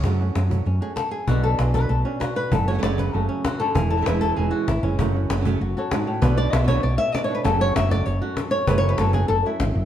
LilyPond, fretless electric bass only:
\new Staff \with { instrumentName = "Fretless electric bass" } { \clef bass \time 4/4 \key fis \minor \tempo 4 = 195 fis,4 fis,4 fis,8 r4. | b,,4 b,,4 b,,8 r4. | fis,,4 fis,,4 fis,,8 r4. | e,,4 e,,4 e,,8 r8 gis,,8 fis,,8 |
fis,,4 fis,,4 fis,,8 r4. | b,,4 b,,4 b,,8 r4. | fis,,4 fis,,4 fis,,8 r4. | fis,,4 fis,,4 fis,,8 r8 gis,,8 fis,,8 | }